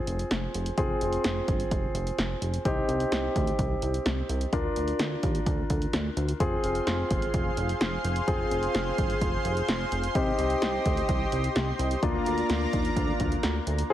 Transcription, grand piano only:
0.00 0.74 C4 medium
0.00 0.74 F4 medium
0.00 0.74 G#4 medium
0.78 2.61 C4 medium
0.78 2.61 F4 medium
0.78 2.61 G#4 medium
2.65 4.49 C4 medium
2.65 4.49 D#4 medium
2.65 4.49 G4 medium
4.53 6.37 D4 medium
4.53 6.37 F4 medium
4.53 6.36 A#4 medium
6.40 8.24 C4 medium
6.40 8.24 F4 medium
6.40 8.24 G#4 medium
8.28 10.11 C4 medium
8.28 10.11 F4 medium
8.28 10.11 G#4 medium
10.15 11.99 C4 medium
10.15 11.99 D#4 medium
10.15 11.99 G4 medium
12.03 13.86 A#3 medium
12.03 13.86 D4 medium
12.03 13.86 F4 medium

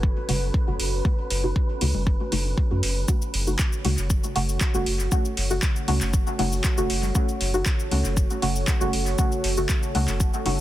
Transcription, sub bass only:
0.00 0.12 F#1 medium
0.29 0.50 F#1 medium
0.67 0.78 F#1 loud
0.80 1.01 F#1 medium
1.30 1.52 F#1 medium
1.81 1.93 C#2 medium
1.95 2.16 F#1 medium
2.32 2.54 F#1 loud
2.71 2.81 F#2 loud
2.83 3.05 F#1 medium
3.34 3.55 F#1 loud
3.85 3.96 C#2 medium
3.98 4.19 F#1 medium
4.36 4.57 F#1 medium
4.74 4.84 F#1 loud
4.87 5.08 F#1 medium
5.37 5.59 F#1 loud
5.88 5.99 C#2 medium
6.02 6.23 F#1 medium
6.39 6.61 F#1 medium
6.78 6.88 F#1 loud
6.90 7.11 F#1 medium
7.41 7.62 F#1 loud
7.92 8.03 C#2 medium
8.05 8.26 F#1 medium
8.42 8.64 F#1 medium
8.81 8.91 F#1 loud
8.93 9.15 F#1 medium
9.44 9.66 F#1 loud
9.95 10.06 C#2 medium
10.08 10.29 F#1 medium
10.46 10.61 F#1 loud

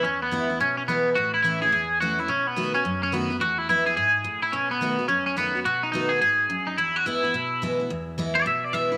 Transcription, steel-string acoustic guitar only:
0.04 0.58 E2 medium
0.31 0.48 E3 medium
0.31 0.49 G#3 loud
0.31 0.49 B3 loud
0.31 0.48 E4 loud
0.50 0.60 B3 medium
0.50 0.59 E4 medium
0.60 1.14 B2 medium
0.88 1.15 E3 medium
0.88 1.15 G#3 medium
0.88 1.16 B3 loud
0.88 1.16 E4 medium
1.17 1.71 A2 medium
1.44 1.61 E3 medium
1.44 1.61 A3 loud
1.44 1.61 C#4 loud
1.44 1.60 E4 loud
1.62 1.72 C#4 medium
1.62 1.72 E4 medium
1.72 2.26 E2 medium
2.01 2.18 E3 medium
2.01 2.18 A3 medium
2.01 2.18 C#4 medium
2.01 2.17 E4 loud
2.19 2.29 C#4 soft
2.19 2.28 E4 medium
2.28 2.83 B2 medium
2.56 2.73 D#3 medium
2.56 2.74 A3 medium
2.56 2.74 B3 loud
2.56 2.73 F#4 loud
2.74 2.85 B3 soft
2.74 2.84 F#4 medium
2.85 3.39 F#2 medium
3.12 3.29 D#3 medium
3.12 3.30 A3 medium
3.12 3.30 B3 medium
3.12 3.29 F#4 loud
3.30 3.41 B3 medium
3.30 3.40 F#4 medium
3.41 3.95 E2 medium
3.69 3.86 E3 medium
3.69 3.86 G#3 medium
3.69 3.87 B3 medium
3.69 3.85 E4 loud
3.86 3.97 B3 soft
3.86 3.97 E4 medium
3.97 4.24 G#2 medium
4.24 4.52 A2 medium
4.53 5.07 B2 medium
4.81 4.98 D#3 medium
4.81 4.98 A3 medium
4.81 4.99 B3 loud
4.81 4.97 F#4 loud
4.99 5.10 B3 medium
4.99 5.09 F#4 medium
5.09 5.63 F#2 medium
5.37 5.54 D#3 medium
5.37 5.54 A3 medium
5.37 5.54 B3 loud
5.37 5.54 F#4 loud
5.55 5.66 B3 medium
5.55 5.65 F#4 medium
5.65 6.19 B2 medium
5.93 6.20 D#3 medium
5.93 6.21 A3 medium
5.93 6.21 B3 loud
5.93 6.21 F#4 loud
6.22 6.49 G#2 medium
6.50 6.77 F#2 loud
6.78 7.32 E2 medium
7.06 7.23 E3 medium
7.06 7.23 G#3 medium
7.06 7.23 B3 loud
7.06 7.22 E4 loud
7.23 7.34 B3 medium
7.23 7.33 E4 medium
7.34 7.88 B2 medium
7.62 7.79 E3 medium
7.62 7.79 G#3 loud
7.62 7.79 B3 medium
7.62 7.78 E4 loud
7.80 7.90 B3 soft
7.80 7.89 E4 medium
7.90 8.44 E2 medium
8.18 8.45 E3 medium
8.18 8.45 G#3 loud
8.18 8.45 B3 medium
8.18 8.45 E4 loud
8.46 8.97 B2 medium
8.73 8.90 E3 medium
8.73 8.90 G#3 loud
8.73 8.91 B3 medium
8.73 8.90 E4 loud
8.92 8.97 B3 soft
8.92 8.97 E4 medium

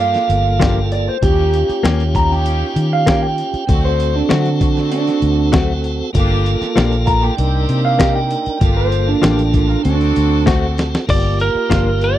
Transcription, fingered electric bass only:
0.00 0.15 G2 medium
0.29 1.08 G1 medium
1.23 1.62 D#2 loud
1.69 muted fingered electric bass stroke soft
1.84 2.62 D#2 loud
2.76 3.41 D#3 medium
3.54 muted fingered electric bass stroke soft
3.69 4.21 D2 loud
4.31 5.09 D3 medium
5.22 6.01 D2 medium
6.15 6.54 G1 loud
6.61 muted fingered electric bass stroke soft
6.77 7.29 A#1 loud
7.39 7.64 C2 loud
7.69 8.35 C3 medium
8.47 muted fingered electric bass stroke soft
8.61 9.14 G1 loud
9.23 9.75 A1 medium
9.85 10.11 D2 loud
10.17 10.95 D2 medium
11.09 11.48 G1 medium
11.55 muted fingered electric bass stroke soft
11.71 12.18 G1 medium

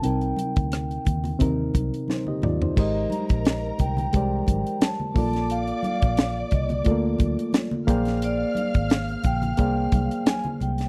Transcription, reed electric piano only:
0.02 1.11 C3 medium
0.02 1.12 C4 medium
0.02 1.12 D#4 medium
0.02 1.13 A#4 medium
1.39 2.48 C3 medium
1.39 2.48 C4 medium
1.39 2.09 D#4 medium
1.39 2.09 A#4 medium
2.09 2.27 D#4 soft
2.09 2.26 C5 medium
2.28 2.43 G4 soft
2.28 2.42 D#5 medium
2.44 2.61 F4 medium
2.44 2.61 D5 medium
2.62 2.94 D#4 soft
2.62 2.77 C5 medium
2.76 3.84 G#3 medium
2.76 3.85 G4 medium
2.76 3.85 A#4 medium
2.76 3.86 C5 medium
2.76 3.86 D#5 medium
4.13 5.15 G#3 medium
4.13 5.15 G4 medium
4.13 5.16 A#4 medium
4.13 5.16 C5 medium
4.13 5.17 D5 medium
5.14 6.24 A#3 medium
5.14 6.25 F4 medium
5.14 6.26 A4 medium
5.14 6.26 D5 medium
6.84 6.92 A3 medium
6.84 7.88 F4 medium
6.84 7.89 A4 medium
6.84 7.88 D5 medium
6.91 7.86 A#3 medium
7.87 8.97 A#3 medium
7.87 8.98 G#4 medium
7.87 8.98 C5 medium
7.87 8.98 D5 medium
7.87 8.99 G5 medium
9.58 10.66 A#3 medium
9.58 10.67 G#4 medium
9.58 10.67 C5 medium
9.58 10.67 D5 medium
9.58 10.68 F5 medium

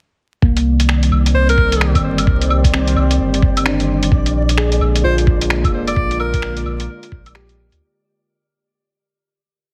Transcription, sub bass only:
0.42 1.10 C2 loud
1.11 1.33 C2 medium
1.34 1.96 C2 medium
1.95 2.26 G1 medium
2.27 2.95 C2 loud
2.96 3.18 C2 medium
3.20 4.11 G1 medium
4.12 4.80 A#1 loud
4.81 5.03 A#1 medium
5.04 5.66 A#1 medium
5.64 5.95 F1 medium
5.96 6.64 A#1 loud
6.66 6.87 A#1 medium
7.12 7.70 A#1 medium
7.72 7.80 D2 medium

